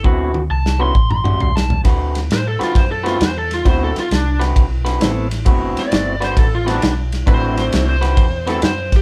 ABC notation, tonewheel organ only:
X:1
M:4/4
L:1/8
Q:"Swing" 1/4=133
K:Dmix
V:1 name="Tonewheel organ"
[A,B,CEF] z2 [G,B,^CEF] z4 | z4 z [A,B,CEF] z2 | [A,B,CEF] z4 z [A,B,CEA] z | [A,B,CEF]3 z2 [A,B,CEF] z2 |
[A,CDEF]3 z2 [A,B,CEA] z2 |]